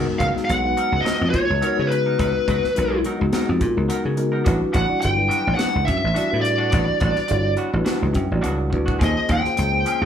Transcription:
Already playing: G#3 B3 D#4 F#4 A#4
0.06 muted clean electric guitar stroke
0.19 C#2 F#3 B3 D#4 A#4 F5, kick, closed hi-hat
0.35 G#3 B3 D#4 F#4 G#4, muted clean electric guitar stroke, muted slap bass stroke, snare
0.45 F#5, muted clean electric guitar stroke
0.49 B1, closed hi-hat
0.64 G#3 B3 D#4 F#4 B4
0.77 F#3 B3 D#4 A#4, closed hi-hat
0.92 C#2, muted clean electric guitar stroke
1.01 F#3 D#5
1.05 B3 D#4 A#4, muted slap bass stroke, snare, closed hi-hat
1.21 F2, muted clean electric guitar stroke
1.30 C#5, muted clean electric guitar stroke, closed hi-hat
1.34 A#2, kick
1.50 C#2
1.61 F#3 G#3 B3 D#4 F#4 A#4, closed hi-hat
1.76 C#3 G#3 B3 D#4 F#4 B4, muted clean electric guitar stroke
1.87 B4
1.91 muted clean electric guitar stroke, closed hi-hat
2.06 B3 D#4 A#4
2.19 C#2 F#3 B3 D#4 A#4, kick, closed hi-hat
2.35 muted clean electric guitar stroke
2.48 C#2 F#3 B3 D#4 A#4, kick, closed hi-hat
2.64 muted clean electric guitar stroke, muted slap bass stroke, snare
2.75 B1 G#3 B3 D#4 F#4 A#4, muted clean electric guitar stroke, closed hi-hat
3.05 F#3 B3 D#4 A#4, closed hi-hat
3.18 C#2 G#3 B3 D#4 F#4 G#4, muted clean electric guitar stroke
3.33 F#3 B3 D#4 A#4, muted slap bass stroke, snare, closed hi-hat
3.49 F2, muted clean electric guitar stroke
3.61 A#2, muted clean electric guitar stroke, kick, closed hi-hat
3.75 C#2 G#3 B3 D#4 F#4 A#4
3.89 F#3 B3 D#4 A#4, closed hi-hat
4.04 C#3, muted clean electric guitar stroke
4.17 G#3 B3 D#4 F#4 A#4, muted clean electric guitar stroke, closed hi-hat
4.32 B3 D#4 A#4
4.44 A1 G3 B3 D4 E4 F#4 B4, kick, closed hi-hat
4.60 muted clean electric guitar stroke
4.72 A1 G3 B3 D4 F#4 F#5, kick, closed hi-hat
4.88 G3 D4 E4 F#4 D5, muted clean electric guitar stroke, muted slap bass stroke
5.00 G5, muted clean electric guitar stroke, closed hi-hat
5.04 G1
5.16 F#3 G3 D4 E4 B4
5.29 G3 B3 D4 F#4, closed hi-hat
5.44 A1, muted clean electric guitar stroke
5.55 G3 B3 D4 F#4 F#5
5.59 muted slap bass stroke, snare, closed hi-hat
5.73 C#2, muted clean electric guitar stroke
5.85 F#2 E5, muted clean electric guitar stroke, kick, closed hi-hat
6.04 A1
6.14 G3 B3 D4 E4 F#4 D5, closed hi-hat
6.30 A2 G3 D4 E4 F#4 B4, muted clean electric guitar stroke
6.41 D5, muted clean electric guitar stroke, closed hi-hat
6.58 B3 D4 F#4
6.71 A1 G3 B3 D4 F#4, kick, closed hi-hat
6.86 muted clean electric guitar stroke
7.00 A1 G3 B3 D4 F#4, kick, closed hi-hat
7.16 muted clean electric guitar stroke, muted slap bass stroke, snare
7.28 G1 G3 D4 E4 F#4 C#5, muted clean electric guitar stroke, closed hi-hat
7.57 G3 B3 D4 F#4, closed hi-hat
7.72 A1 G3 D4 E4 F#4 B4, muted clean electric guitar stroke
7.85 G3 B3 D4 F#4, muted slap bass stroke, snare, closed hi-hat
7.99 C#2, muted clean electric guitar stroke
8.13 F#2 G5, muted clean electric guitar stroke, kick, closed hi-hat
8.30 A1 G3 D4 E4 F#4 D5
8.41 C#2 G3 B3 D4 F#4 F#5, closed hi-hat
8.57 muted clean electric guitar stroke
8.70 D2 G3 D4 E4 F#4 B4 D5, muted clean electric guitar stroke, kick
8.86 B3 D4 F#4, kick
8.99 D#2 D#3 F3 A#3 C4 C#4 F4 G#4 C5, kick, closed hi-hat
9.04 D#5
9.15 muted clean electric guitar stroke
9.29 D#2 F3 C4 C#4 G#4 G5, kick, closed hi-hat
9.44 A#3 C#4 F4 G#4 C5, muted clean electric guitar stroke, muted slap bass stroke, snare
9.56 C#2, muted clean electric guitar stroke, closed hi-hat
9.72 A#3 C#4 F4 G#4 C5
9.85 F3 C4 C#4 G#4, closed hi-hat
10.01 D#2, muted clean electric guitar stroke

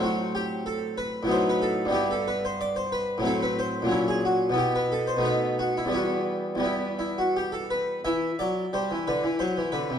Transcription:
Already playing: A2 F#3
0.00 C4 F#4
0.35 G4
0.66 A4
0.98 B4
1.23 A2 F#3
1.27 B3 D#4
1.31 C5
1.49 B4
1.62 A4
1.85 G2 G3
1.91 B3 E4 G4
2.11 A4
2.28 B4
2.45 C5
2.61 D5
2.76 C5
2.92 B4
3.18 A2 F#3
3.22 C4 E4 A4
3.43 B4
3.59 C5
3.82 A#2 F#3
3.87 C#4
3.91 E4
4.08 G#4
4.25 F#4
4.50 B2 B3
4.54 E4
4.58 G4
4.76 B4
4.92 A4
5.07 C5
5.17 B2 A3
5.21 B3 D#4
5.25 B4
5.59 F#4
5.77 E4
5.85 E2 G3
5.90 B3 E4
5.94 F#4
6.55 E2 G3
6.60 B3 E4
6.99 E4
7.18 F#4
7.37 G4
7.52 A4
7.70 B4
8.05 E3 E4 E5
8.39 F#3 D5
8.73 G3 C5
8.91 E3
9.07 D3 B4
9.24 E3
9.39 F#3 C5
9.57 E3
9.72 D3 B4
9.90 C3

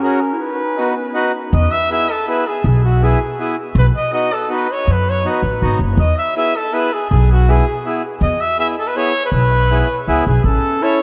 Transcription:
Already playing: C#4
0.02 C#4 F#4 G#4 A#4
0.20 A#4
0.33 E4
0.40 D#4 B4
0.77 B3 D#4 F#4 B4
1.14 D#4 F#4 B4
1.53 E2 D#5
1.71 E5
1.90 B3 E4 G#4 E5
2.11 A4
2.27 B3 E4 G#4 B4
2.47 G#4
2.64 B1 G#4
2.85 F#4
3.02 B3 E4 G#4
3.39 B3 E4 G#4
3.75 B1 B4
3.96 D#5
4.12 B3 D#4 F#4 D#5
4.33 A4
4.49 B3 D#4 F#4 B4
4.72 C#5
4.87 F#2
4.92 B4
5.10 C#5
5.24 B3 D#4 F#4
5.29 B4
5.43 A1
5.61 G#1 B3 D#4 F#4
5.79 F#1
5.97 E2 D#5
6.18 E5
6.36 B3 E4 G#4 E5
6.56 A4
6.73 B3 E4 G#4 B4
6.93 G#4
7.10 B1 G#4
7.32 F#4
7.48 B3 E4 G#4
7.85 B3 E4 G#4
8.21 E2 D#5
8.41 E5
8.59 B3 E4 G#4 E5
8.79 A4
8.87 B4
8.96 B3 E4 G#4 C#5
9.25 B4
9.32 B1 B4
9.71 B3 E4 G#4
10.08 C#2 B3 E4 G#4
10.27 B1 G#4
10.44 A1 C#4 A4
10.82 C#4 E4 A4 C#5

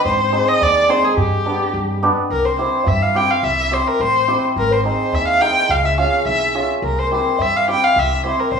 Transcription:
0.05 G#2 C5
0.32 C4 D#4 G#4
0.48 D#5
0.60 D#2 D5
0.89 C4 D#4 G#4 C5
1.03 G#4
1.17 G2 G4
1.46 B3 D4 G4
1.74 G2
2.03 B3 D4 G4
2.30 C2 A#4
2.45 C5
2.59 C4 E4 G4 C5
2.84 G2 E5 F5
3.02 F5
3.15 C4 E4 G4 G5
3.31 F5
3.43 C2 E5
3.71 C4 E4 G4 C5
3.88 A#4
4.00 A1 C5
4.27 C4 E4 G4
4.56 G#1 A#4
4.71 C5
4.84 C4 D#4 G#4 C5
5.13 D#2 E5
5.28 F5
5.41 C4 D#4 G#4 G5
5.69 C#2 F5
5.83 E5
5.98 C#4 F4 G#4 F5
6.25 B1 E5
6.55 C#4 F4 G#4
6.82 C2 A#4
6.99 C5
7.11 C4 E4 G4 C5
7.39 G2 E5
7.56 F5
7.68 C4 E4 G4 G5
7.84 F5
7.96 C2 E5
8.24 C4 E4 G4 C5
8.40 A#4
8.52 A#1 C5

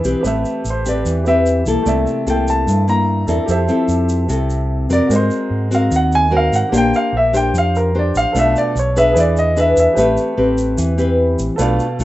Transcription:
Already playing: E3 G#4 B4 D5 E5
0.04 B1 C4 G4 B4, shaker
0.21 A1 G4 B4, shaker
0.26 A3 E5
0.45 shaker
0.65 A1, shaker
0.70 C5
0.86 C4 G4 B4 D5, shaker
1.05 E2 E3, shaker
1.24 C4 G4 B4 E5, shaker
1.28 B4 E5
1.46 shaker
1.66 B1 A#3 E4 A4, shaker
1.83 C2 C3 A3 D5, shaker
1.89 E5
2.07 shaker
2.27 C2 A#3 E4 A4 G5, shaker
2.48 A5, shaker
2.67 G2, shaker
2.88 A#3 E4 A#5, shaker
3.27 E2 C4 E4 A4 A#4 D5 E5, shaker
3.46 F2 F3 G4 A4 C5, shaker
3.52 E5
3.68 C4 E4 A4, shaker
3.88 F2, shaker
4.09 shaker
4.29 C2 C3 C4 E4 A4, shaker
4.50 shaker
4.89 F2 C4 F#4 A#4 D5, shaker
5.07 G#2 G#3 F#4 A#4 C5, shaker
5.13 C5 D#5
5.31 shaker
5.50 G#2
5.71 C4 F#4 A#4 F5, shaker
5.91 D#2 D#3, shaker
5.96 F#5
6.12 G#5, shaker
6.30 C4 F#4 A#4 C5 F#5
6.37 F5
6.52 G#2 F#5, shaker
6.69 A#1 A#3 D4 G4 C5
6.73 D5 F5, shaker
6.78 G5
6.94 F5, shaker
7.13 A#1
7.17 E5
7.33 D4 G4 C5 G5, shaker
7.53 F2 F3, shaker
7.58 F5
7.75 A#4, shaker
7.95 D4 G4 C5
7.99 D5
8.15 A1 F5, shaker
8.32 B1 B2 A3 A4 B4 D5, shaker
8.36 D4 F4 E5 F5
8.56 D5, shaker
8.75 B1 C#5, shaker
8.96 D4 G#4 B4 E5, shaker
9.12 E2 E3 G#4 B4
9.16 D5 E5, shaker
9.37 D#5, shaker
9.57 D4 G#4 B4 E5, shaker
9.77 E2 E5, shaker
9.93 A1 C4 G4 B4, shaker
9.97 A3 G4 B4 E5
10.17 shaker
10.37 A1 C4 G4 B4
10.58 shaker
10.78 E2 E3, shaker
10.98 C4 G4 B4, shaker
11.39 A1, shaker
11.56 B1 B2 A3 D4 F4 A4 B4, shaker
11.60 D5 F5
11.80 shaker
11.99 B1 A3 D4, shaker

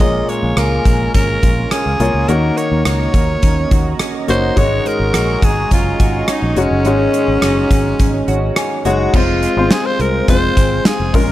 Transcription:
Already playing: C#4 C#6
0.00 A#1 A#2 G#3 A#3 F4 G#4 A#4 C#5 D#5 F5 G#5, kick, closed hi-hat
0.29 G#3 C#5, closed hi-hat
0.43 A#1
0.57 C#2 F4 A#4, cross-stick, closed hi-hat
0.85 A#1 G#3, kick, closed hi-hat
1.14 G#1 C#4 A#4, kick, closed hi-hat
1.43 A#1 F4, kick, closed hi-hat
1.71 C#4 G#4, cross-stick, closed hi-hat
1.86 C#2
2.00 C2 A#3 F4 G#4 C#5, closed hi-hat
2.14 C#2
2.28 D#2 D#3 A#3 D#4 F#4 A#4 C#5 D#5 A#5, closed hi-hat
2.57 A#3 C#5, closed hi-hat
2.71 D#2
2.85 C#2 F#4 C#5, cross-stick, closed hi-hat
3.14 D#2 A#3, kick, closed hi-hat
3.42 D#2 C#4, kick, closed hi-hat
3.71 D#2 F#4, kick, closed hi-hat
3.99 C#4, cross-stick, closed hi-hat
4.28 F#1 A#3 D#4 F#4 C5 C#5, closed hi-hat
4.56 G#1 G#2 D#3 G#3 D#4 F#4 G#4 C#5 C#6, kick, closed hi-hat
4.85 G#3 A#4, closed hi-hat
5.00 G#1
5.14 A#1 F#4, cross-stick, closed hi-hat
5.42 G#1 G#3 G#4, kick, closed hi-hat
5.71 F#1 C#4 F4, kick, closed hi-hat
6.00 G#1 F#4, kick, closed hi-hat
6.28 C#4 D#4, cross-stick, closed hi-hat
6.42 A#1
6.56 F1 G#3 C#4 D#4 F#4 C#5, closed hi-hat
6.71 F#1
6.85 G#1 G#2 D#3 G#3 D#4 F#4 C#5, closed hi-hat
7.14 G#3, closed hi-hat
7.28 G#1
7.42 F#1 F#4, cross-stick, closed hi-hat
7.71 G#1 G#3, kick, closed hi-hat
7.99 G#1 C#4, kick, closed hi-hat
8.28 G#1 F#4 C#5, closed hi-hat
8.56 C#4 G#5, cross-stick, closed hi-hat
8.85 F#1 G#3 D#4 F#4 C#5, closed hi-hat
9.14 F1 G#3 C4 F4 G#4 C5 F5 C6, kick, crash
9.42 G#3, closed hi-hat
9.57 G#1 G#3 C4 F4 C5
9.71 F4 G#4, snare, closed hi-hat
9.86 C5
9.99 C2 G#3 A#4, closed hi-hat
10.28 F1 G#3 C4 F4 C5, kick, closed hi-hat
10.57 G#1 C4, kick, closed hi-hat
10.85 F4 G#4, snare, closed hi-hat
11.00 F1
11.13 A#1 A#2 G#3 C#4 F4 A#4 C#5 A#5, kick, open hi-hat
11.28 G#1

